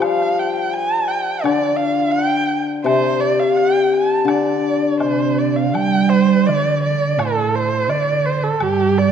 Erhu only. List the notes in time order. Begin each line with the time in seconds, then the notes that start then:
0.02 F5
0.39 G5
0.55 G5
0.73 A5
1.08 G5
1.43 D5
1.76 F5
2.11 G5
2.84 C5
3.20 D5
3.39 F5
3.57 G5
3.94 A5
4.29 D5
5.00 C5
5.38 D5
5.56 F5
5.74 G5
6.10 C5
6.46 D5
6.83 D5
7.19 A4
7.55 C5
7.89 D5
8.26 C5
8.44 A4
8.63 G4
8.98 D5